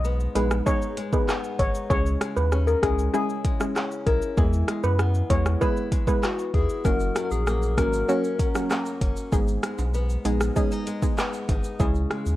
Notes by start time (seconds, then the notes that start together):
Already playing: B1 G#2 G#3 B3 D#4 G#4
0.05 B3, shaker
0.20 shaker
0.35 A#1 G#3 B3 D#4 G#4 B4, closed hi-hat, shaker
0.51 cross-stick, shaker
0.66 G#3 B3 D#4 G#4 C#5, kick, shaker
0.82 shaker
0.97 G#3, closed hi-hat, shaker
1.13 G#3 B3 D#4 G#4 B4, kick, shaker
1.28 B3, cross-stick, clap, shaker
1.44 shaker
1.59 G#1 D#4 C#5, kick, closed hi-hat, shaker
1.75 shaker
1.90 C#2 C#3 G#3 C#4 E4 G#4 C#5, kick, shaker
2.06 shaker
2.21 G#3, cross-stick, closed hi-hat, shaker
2.36 D#2 B4, shaker
2.52 C#4, cross-stick, shaker
2.67 A#4, shaker
2.83 C#2 G#3 C#4 E4 G#4, kick, cross-stick, closed hi-hat, shaker
2.99 shaker
3.14 G#3 C#4 E4 G#4, shaker
3.29 shaker
3.45 G#3, kick, closed hi-hat, shaker
3.60 G#3 C#4 E4 G#4, cross-stick, shaker
3.76 C#4, cross-stick, clap, shaker
3.91 shaker
4.07 B1 E4 A#4, kick, closed hi-hat, shaker
4.22 shaker
4.37 E2 E3 G#3 B3 E4 G#4, kick, shaker
4.53 shaker
4.68 G#3, cross-stick, closed hi-hat, shaker
4.84 F#2 B4, shaker
4.99 B3, cross-stick, shaker
5.15 shaker
5.30 E2 G#3 B3 E4 G#4 C#5, kick, closed hi-hat, shaker
5.46 cross-stick, shaker
5.61 G#3 B3 E4 G#4 B4, kick, shaker
5.77 shaker
5.92 G#3, kick, closed hi-hat, shaker
6.07 G#3 B3 E4 G#4 B4, kick, shaker
6.23 B3 F#4, cross-stick, clap, shaker
6.39 shaker
6.54 D#2 E4 G#4, kick, closed hi-hat, shaker
6.70 shaker
6.85 F#1 F#2 F#3 A#3 C#4 F#4 A#4, kick, shaker
7.00 shaker
7.16 F#3, cross-stick, closed hi-hat, shaker
7.25 A#4
7.31 A#1 G#4, shaker
7.47 A#3, cross-stick, shaker
7.62 shaker
7.77 G#1 F#3 A#3 C#4 F#4 A#4, kick, cross-stick, closed hi-hat, shaker
7.93 shaker
8.08 F#3 A#3 C#4 F#4, shaker
8.24 shaker
8.39 F#3, kick, closed hi-hat, shaker
8.55 F#3 A#3 C#4 F#4, cross-stick, shaker
8.70 A#3, cross-stick, clap, shaker
8.86 shaker
9.01 F#1 C#4, kick, closed hi-hat, shaker
9.17 shaker
9.32 G#1 G#2 G#3 B3 D#4 G#4, kick, shaker
9.48 shaker
9.63 G#3, cross-stick, closed hi-hat, shaker
9.79 B1, high timbale, shaker
9.94 B3, shaker
10.10 shaker
10.25 A#1 G#3 B3 D#4 G#4, closed hi-hat, shaker
10.41 cross-stick, shaker
10.56 G#3 B3 C#4 D#4 G#4, kick, shaker
10.71 D#4, shaker
10.87 G#3, closed hi-hat, shaker
11.02 G#3 B3 D#4 G#4, kick, shaker
11.18 B3, cross-stick, clap, shaker
11.33 shaker
11.49 G#1 D#4, kick, closed hi-hat, high timbale, shaker
11.64 shaker
11.79 C#2 C#3 G#3 C#4 E4 G#4, kick, shaker
11.95 shaker
12.10 G#3, cross-stick, closed hi-hat, shaker
12.26 D#2, shaker